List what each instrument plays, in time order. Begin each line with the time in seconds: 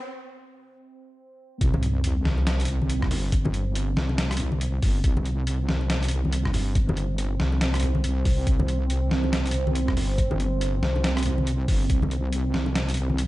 Already playing: analog synth pad C4
1.61 wobble bass C2, analog synth pad C4, kick, closed hi-hat, sub drop
1.73 high bongo, high conga, low conga
1.83 closed hi-hat
2.04 closed hi-hat
2.25 wobble bass C2, snare, high conga
2.38 high bongo
2.47 snare, closed hi-hat
2.60 closed hi-hat
2.65 closed hi-hat
2.68 closed hi-hat
2.82 high conga
2.90 closed hi-hat
3.02 kick, cross-stick
3.11 wobble bass G1, open hi-hat, low conga
3.32 kick, closed hi-hat
3.45 high bongo, high conga, low conga
3.54 closed hi-hat
3.75 closed hi-hat
3.96 wobble bass C2, snare, high conga
4.09 high bongo
4.18 snare, closed hi-hat
4.31 cross-stick, closed hi-hat
4.37 closed hi-hat, low conga
4.40 closed hi-hat
4.52 high conga
4.61 closed hi-hat
4.82 wobble bass G1, kick, open hi-hat
5.04 wobble bass C2, kick, closed hi-hat
5.17 high bongo, high conga, low conga
5.25 closed hi-hat
5.47 closed hi-hat
5.68 wobble bass C2, snare, high conga
5.81 high bongo
5.90 snare, closed hi-hat
6.03 closed hi-hat
6.08 closed hi-hat
6.11 closed hi-hat
6.25 high conga
6.33 closed hi-hat
6.45 kick, cross-stick
6.53 wobble bass G1, open hi-hat, low conga
6.75 kick, closed hi-hat
6.89 high bongo, high conga, low conga
6.97 closed hi-hat
7.18 closed hi-hat
7.40 wobble bass C2, snare, high conga
7.53 high bongo
7.61 snare, closed hi-hat
7.74 cross-stick, closed hi-hat
7.80 closed hi-hat
7.83 closed hi-hat, low conga
7.95 high conga
8.04 wobble bass C2, closed hi-hat
8.25 kick, open hi-hat
8.47 wobble bass C2, kick, closed hi-hat
8.59 high bongo, high conga, low conga
8.68 closed hi-hat
8.90 closed hi-hat
9.11 wobble bass C2, snare, high conga
9.24 high bongo
9.33 snare, closed hi-hat
9.46 closed hi-hat
9.47 closed hi-hat
9.51 closed hi-hat
9.54 closed hi-hat
9.67 high conga
9.75 closed hi-hat
9.88 kick, cross-stick
9.97 wobble bass G1, open hi-hat, low conga
10.18 kick, closed hi-hat
10.31 high bongo, high conga, low conga
10.40 closed hi-hat
10.61 closed hi-hat
10.82 wobble bass C2, snare, high conga
10.96 high bongo
11.04 snare, closed hi-hat
11.17 cross-stick, closed hi-hat
11.18 closed hi-hat
11.23 closed hi-hat
11.26 closed hi-hat, low conga
11.38 high conga
11.47 closed hi-hat
11.68 wobble bass G1, kick, open hi-hat
11.90 wobble bass C2, kick, closed hi-hat
12.02 high bongo, high conga, low conga
12.11 closed hi-hat
12.33 closed hi-hat
12.54 wobble bass C2, snare, high conga
12.66 high bongo
12.75 snare, closed hi-hat
12.88 closed hi-hat
12.94 closed hi-hat
12.97 closed hi-hat
13.10 high conga
13.18 closed hi-hat